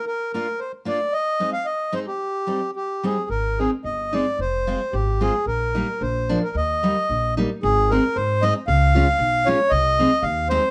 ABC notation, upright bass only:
X:1
M:2/4
L:1/8
Q:1/4=112
K:Eb
V:1 name="Upright bass" clef=bass
z4 | z4 | z4 | A,,,2 G,,,2 |
F,,,2 A,,,2 | B,,,2 B,,,2 | E,,2 B,,,2 | [K:Ab] A,,,2 A,,2 |
D,,2 _C,,2 | C,,2 E,,2 |]